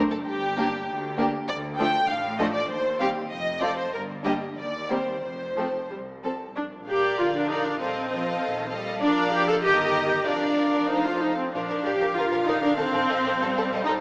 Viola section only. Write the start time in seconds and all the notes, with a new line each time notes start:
0.57 A#3
1.18 A#3
1.79 F3 A3
2.39 F3 A3
3.00 G3 C4
3.61 C4
4.24 G3 A#3
4.90 G3 A#3
5.57 F3 A3
5.91 G3
6.24 F3
6.56 D4
6.88 G4
7.18 F4
7.35 D4
7.49 D#4
7.65 D4
7.81 C4
9.02 D4
9.33 G4
9.48 A4
9.64 G4
9.84 G4
10.06 G4
10.26 D4
10.90 D#4
11.05 F4
11.21 D#4
11.37 C4
11.53 D4
11.85 G4
12.16 F4
12.46 D#4
12.62 D4
12.78 C4
13.85 D#4